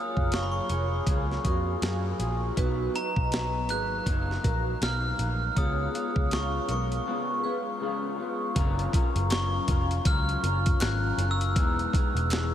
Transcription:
Already playing: clean electric guitar A#3 F4 G#4, vibraphone C#5 F5, glockenspiel D#6
0.17 picked electric bass F#1, kick
0.32 clean electric guitar F#3 A#3 F4 G#4, vibraphone C#5 F5, glockenspiel C#6, snare, closed hi-hat
0.42 glockenspiel B5
0.52 glockenspiel C#6
0.69 picked electric bass F1, clean electric guitar A#3 F4 G#4, vibraphone A#4 C#5, closed hi-hat
1.06 picked electric bass C#2, clean electric guitar F#3 A#3 F4 G#4, kick, closed hi-hat
1.31 snare
1.44 picked electric bass F2, clean electric guitar A#3 F4 G#4, vibraphone F#4 A#4, kick, closed hi-hat
1.82 picked electric bass F#2, clean electric guitar F#3 A#3 F4 G#4, snare, closed hi-hat
2.19 picked electric bass A#1, clean electric guitar A#3 F4 G#4, closed hi-hat
2.56 picked electric bass B1, clean electric guitar B2 F#3 D#4, vibraphone F#4 B4, kick, closed hi-hat
2.94 clean electric guitar F#3 D#4, vibraphone B4 D#5, glockenspiel A#5, closed hi-hat
3.16 picked electric bass B1, kick
3.31 clean electric guitar B2 F#3 D#4, vibraphone B4 D#5, snare, closed hi-hat
3.69 picked electric bass G#1, clean electric guitar F#3 A#3 D#4, vibraphone G#4 B4, glockenspiel F#6, closed hi-hat
4.06 picked electric bass F#1, clean electric guitar B2 F#3 A#3 D#4, kick, closed hi-hat
4.31 snare
4.44 picked electric bass A#1, clean electric guitar F#3 A#3 D#4, vibraphone F#4 A#4, kick, closed hi-hat
4.81 picked electric bass B1, clean electric guitar B2 F#3 A#3 D#4, glockenspiel F6, snare, closed hi-hat
5.18 picked electric bass A#1, clean electric guitar F#3 A#3 D#4, closed hi-hat
5.56 picked electric bass C#2, clean electric guitar C#3 G#3 B3 F4, vibraphone G#4 C#5, glockenspiel D#6, kick, closed hi-hat
5.94 clean electric guitar G#3 B3 F4, vibraphone C#5 F5, closed hi-hat
6.16 picked electric bass C#2, kick
6.31 clean electric guitar C#3 G#3 B3 F4, vibraphone C#5 F5, glockenspiel C#6, snare, closed hi-hat
6.69 picked electric bass B1, clean electric guitar G#3 B3 F4, vibraphone A#4 C#5, glockenspiel C#6, closed hi-hat
6.92 closed hi-hat
7.06 clean electric guitar C#3 G#3 B3 F4
7.44 clean electric guitar G#3 B3 F4, vibraphone G#4 B4
7.80 clean electric guitar C#3 G#3 B3 F4
8.18 clean electric guitar G#3 B3 F4
8.55 picked electric bass F#1, clean electric guitar F#3 C#4 F4 A#4, kick, closed hi-hat
8.79 closed hi-hat
8.93 clean electric guitar C#4 F4 A#4, kick, closed hi-hat
9.15 picked electric bass F#1, closed hi-hat
9.30 clean electric guitar F#3 C#4 F4 A#4, glockenspiel C#6, snare, clap, closed hi-hat
9.68 picked electric bass F1, clean electric guitar C#4 F4 A#4, kick, closed hi-hat
9.91 closed hi-hat
10.05 picked electric bass C#2, clean electric guitar F#3 C#4 F4 A#4, glockenspiel F6, kick, closed hi-hat
10.29 closed hi-hat
10.43 picked electric bass F#1, clean electric guitar C#4 F4 A#4, closed hi-hat
10.66 kick, closed hi-hat
10.81 picked electric bass G#1, clean electric guitar F#3 C#4 F4 A#4, glockenspiel F#6, snare, clap, closed hi-hat
11.18 picked electric bass F#1, clean electric guitar C#4 F4 A#4, closed hi-hat
11.31 glockenspiel E6
11.41 closed hi-hat
11.56 picked electric bass E1, clean electric guitar E3 G#3 B3 D#4, kick, closed hi-hat
11.79 closed hi-hat
11.93 clean electric guitar G#3 B3 D#4, kick, closed hi-hat
12.15 picked electric bass E1, closed hi-hat
12.31 clean electric guitar E3 G#3 B3 D#4, snare, clap, closed hi-hat

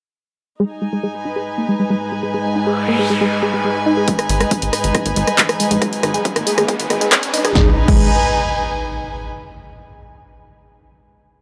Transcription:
0.60 ambient pad G#2 G#3, synth arpeggio sound G#3, string section D#4
0.73 string section G#5
0.82 synth arpeggio sound G#3
0.93 synth arpeggio sound G#3
1.03 synth arpeggio sound G#3
1.17 string section B4
1.25 synth arpeggio sound D#4
1.36 synth arpeggio sound G#4
1.58 synth arpeggio sound A#3
1.69 synth arpeggio sound G#3
1.79 synth arpeggio sound G#3
1.90 synth arpeggio sound G#3
2.12 synth arpeggio sound G#3
2.23 synth arpeggio sound G#3
2.34 synth arpeggio sound G#3, noise sweep
2.56 synth arpeggio sound D#4
2.67 synth arpeggio sound G#4
2.88 synth arpeggio sound A#3
2.99 synth arpeggio sound G#3
3.10 synth arpeggio sound G#3
3.21 synth arpeggio sound G#3
3.43 synth arpeggio sound G#3
3.54 synth arpeggio sound G#3
3.64 synth arpeggio sound G#3
3.86 synth arpeggio sound D#4
3.97 synth arpeggio sound G#4
4.08 ambient pad G#2 G#3, synth arpeggio sound G#3, kick, closed hi-hat, riser
4.19 cross-stick, closed hi-hat
4.29 analog synth bass G#1, synth arpeggio sound G#3, open hi-hat
4.40 synth arpeggio sound G#3, cross-stick, closed hi-hat
4.51 synth arpeggio sound G#3, kick, closed hi-hat
4.62 analog synth bass G#1, closed hi-hat
4.73 synth arpeggio sound D#4, cross-stick, open hi-hat
4.84 analog synth bass G#1, synth arpeggio sound G#4, closed hi-hat
4.95 kick, cross-stick, closed hi-hat
5.06 analog synth bass G#1, synth arpeggio sound A#3, closed hi-hat
5.16 analog synth bass G#1, synth arpeggio sound G#3, open hi-hat
5.27 synth arpeggio sound G#3, cross-stick, closed hi-hat
5.38 synth arpeggio sound G#3, kick, clap, closed hi-hat
5.49 cross-stick, closed hi-hat
5.60 synth arpeggio sound G#3, open hi-hat
5.71 analog synth bass A#1, synth arpeggio sound G#3, closed hi-hat
5.81 synth arpeggio sound G#3, kick, cross-stick, closed hi-hat
5.93 open hi-hat
6.03 analog synth bass G#1, synth arpeggio sound D#4, cross-stick, open hi-hat
6.14 synth arpeggio sound G#4, closed hi-hat
6.25 kick, closed hi-hat
6.36 analog synth bass G#1, synth arpeggio sound A#3, cross-stick, closed hi-hat
6.47 synth arpeggio sound G#3, open hi-hat
6.58 analog synth bass G#1, synth arpeggio sound G#3, cross-stick, closed hi-hat
6.68 synth arpeggio sound G#3, kick, closed hi-hat
6.80 analog synth bass G#1, closed hi-hat
6.90 analog synth bass G#1, synth arpeggio sound G#3, cross-stick, open hi-hat
7.01 synth arpeggio sound G#3, closed hi-hat
7.12 synth arpeggio sound G#3, kick, cross-stick, clap, closed hi-hat
7.23 closed hi-hat
7.34 synth arpeggio sound D#4, open hi-hat
7.45 analog synth bass A#1, synth arpeggio sound G#4, cross-stick, closed hi-hat
7.55 analog synth bass G#1, synth arpeggio sound G#3, string section D#4, kick, snare, impact
7.62 string section B4
7.69 string section G#5
7.88 analog synth bass G#1, synth arpeggio sound G#3, kick, crash

